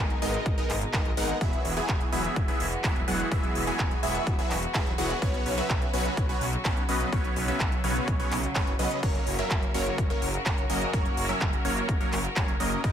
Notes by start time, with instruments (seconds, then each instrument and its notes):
Already playing: string section B2 G#3 D#4 A#4, supersaw synth G#3 B3 D#4 A#4 G#5
0.00 detuned saw bass G#1
0.10 closed hi-hat
0.22 detuned saw bass G#1, supersaw synth G#3 B3 D#4 A#4 D#5, open hi-hat
0.34 closed hi-hat
0.46 detuned saw bass G#1, kick, closed hi-hat
0.58 supersaw synth G#3 B3 D#4 A#4 D#5, closed hi-hat
0.70 detuned saw bass G#1, clap, open hi-hat
0.81 closed hi-hat
0.93 detuned saw bass G#1, supersaw synth G#3 B3 D#4 A#4 D#5, kick, clap, closed hi-hat
1.05 detuned saw bass G#1, closed hi-hat
1.17 detuned saw bass G#1, supersaw synth G#3 B3 D#4 A#4 F#5, open hi-hat
1.29 closed hi-hat
1.41 detuned saw bass E1, string section E3 G#3 B3 F#4, supersaw synth F#3 B3 E4 G#4 E5, kick, closed hi-hat
1.53 closed hi-hat
1.65 detuned saw bass E1, open hi-hat
1.77 supersaw synth F#3 B3 E4 G#4 G#5, closed hi-hat
1.89 detuned saw bass E1, kick, clap, closed hi-hat
2.01 closed hi-hat
2.12 detuned saw bass E1, supersaw synth F#3 B3 E4 G#4 E5, open hi-hat
2.24 closed hi-hat
2.36 detuned saw bass E1, kick, closed hi-hat
2.48 supersaw synth F#3 B3 E4 G#4 E5, closed hi-hat
2.60 detuned saw bass E1, open hi-hat
2.72 closed hi-hat
2.84 detuned saw bass E1, supersaw synth F#3 B3 E4 G#4 E5, kick, clap, closed hi-hat
2.96 detuned saw bass E1, closed hi-hat
3.08 detuned saw bass E1, supersaw synth F#3 B3 E4 G#4 F#5, open hi-hat
3.20 closed hi-hat
3.32 detuned saw bass E1, supersaw synth F#3 B3 E4 G#4 E5, kick, closed hi-hat
3.43 closed hi-hat
3.55 detuned saw bass E1, open hi-hat
3.67 supersaw synth F#3 B3 E4 G#4 G#5, closed hi-hat
3.79 detuned saw bass E1, kick, clap, closed hi-hat
3.91 closed hi-hat
4.03 detuned saw bass E1, supersaw synth F#3 B3 E4 G#4 E5, open hi-hat
4.15 closed hi-hat
4.27 detuned saw bass E1, kick, closed hi-hat
4.39 supersaw synth F#3 B3 E4 G#4 E5, closed hi-hat
4.51 detuned saw bass E1, clap, open hi-hat
4.63 closed hi-hat
4.74 detuned saw bass E1, supersaw synth F#3 B3 E4 G#4 E5, kick, clap, closed hi-hat
4.86 detuned saw bass E1, closed hi-hat
4.98 detuned saw bass E1, supersaw synth F#3 B3 E4 G#4 F#5, open hi-hat
5.10 closed hi-hat
5.22 detuned saw bass B1, string section C#3 F#3, supersaw synth F#3 B3 C#4 B4 C#5, kick, closed hi-hat
5.34 closed hi-hat
5.46 detuned saw bass B1, open hi-hat
5.58 supersaw synth F#3 B3 C#4 B4 E5, closed hi-hat
5.70 detuned saw bass B1, kick, clap, closed hi-hat
5.82 closed hi-hat
5.93 detuned saw bass B1, supersaw synth F#3 B3 C#4 B4 C#5, open hi-hat
6.05 closed hi-hat
6.17 detuned saw bass B1, kick, closed hi-hat
6.29 supersaw synth F#3 B3 C#4 B4 C#5, closed hi-hat
6.41 detuned saw bass B1, open hi-hat
6.53 closed hi-hat
6.65 detuned saw bass B1, supersaw synth F#3 B3 C#4 B4 C#5, kick, clap, closed hi-hat
6.77 detuned saw bass B1, closed hi-hat
6.89 detuned saw bass B1, supersaw synth F#3 B3 C#4 B4 D#5, open hi-hat
7.01 closed hi-hat
7.12 detuned saw bass B1, supersaw synth F#3 B3 C#4 B4 C#5, string section C#4, kick, closed hi-hat
7.24 closed hi-hat
7.36 detuned saw bass B1, open hi-hat
7.48 supersaw synth F#3 B3 C#4 B4 E5, closed hi-hat
7.60 detuned saw bass B1, kick, clap, closed hi-hat
7.72 closed hi-hat
7.84 detuned saw bass B1, supersaw synth F#3 B3 C#4 B4 C#5, open hi-hat
7.96 closed hi-hat
8.08 detuned saw bass B1, kick, closed hi-hat
8.20 supersaw synth F#3 B3 C#4 B4 C#5, closed hi-hat
8.31 detuned saw bass B1, clap, open hi-hat
8.43 closed hi-hat
8.55 detuned saw bass F#1, supersaw synth F#3 B3 C#4 B4 C#5, kick, clap, closed hi-hat
8.67 detuned saw bass F#1, closed hi-hat
8.79 detuned saw bass B1, supersaw synth F#3 B3 C#4 B4 D#5, open hi-hat
8.91 closed hi-hat
9.03 detuned saw bass F#1, supersaw synth F#3 A#3 C#4 A#4 C#5, string section F#4 A#4, kick, closed hi-hat, crash
9.15 closed hi-hat
9.27 detuned saw bass F#1, open hi-hat
9.39 supersaw synth F#3 A#3 C#4 A#4 E5, closed hi-hat
9.51 detuned saw bass F#1, kick, clap, closed hi-hat
9.62 closed hi-hat
9.74 detuned saw bass F#1, supersaw synth F#3 A#3 C#4 A#4 C#5, open hi-hat
9.86 closed hi-hat
9.98 detuned saw bass F#1, kick, closed hi-hat
10.10 supersaw synth F#3 A#3 C#4 A#4 C#5, closed hi-hat
10.22 detuned saw bass F#1, open hi-hat
10.34 closed hi-hat
10.46 detuned saw bass F#1, supersaw synth F#3 A#3 C#4 A#4 C#5, kick, clap, closed hi-hat
10.58 detuned saw bass F#1, closed hi-hat
10.70 detuned saw bass F#1, supersaw synth F#3 A#3 C#4 A#4 D#5, open hi-hat
10.82 closed hi-hat
10.93 detuned saw bass F#1, supersaw synth F#3 A#3 C#4 A#4 C#5, kick, closed hi-hat
11.05 closed hi-hat
11.17 detuned saw bass F#1, open hi-hat
11.29 supersaw synth F#3 A#3 C#4 A#4 E5, closed hi-hat
11.41 detuned saw bass F#1, kick, clap, closed hi-hat
11.53 closed hi-hat
11.65 detuned saw bass F#1, supersaw synth F#3 A#3 C#4 A#4 C#5, open hi-hat
11.77 closed hi-hat
11.89 detuned saw bass F#1, kick, closed hi-hat
12.01 supersaw synth F#3 A#3 C#4 A#4 C#5, closed hi-hat
12.13 detuned saw bass F#1, clap, open hi-hat
12.24 closed hi-hat
12.36 detuned saw bass F#1, supersaw synth F#3 A#3 C#4 A#4 C#5, kick, clap, closed hi-hat
12.48 detuned saw bass F#1, closed hi-hat
12.60 detuned saw bass F#1, supersaw synth F#3 A#3 C#4 A#4 D#5, open hi-hat
12.72 closed hi-hat
12.84 detuned saw bass G#1, string section B2 G#3 D#4, supersaw synth G#3 B3 D#4 A#4 D#5, kick, closed hi-hat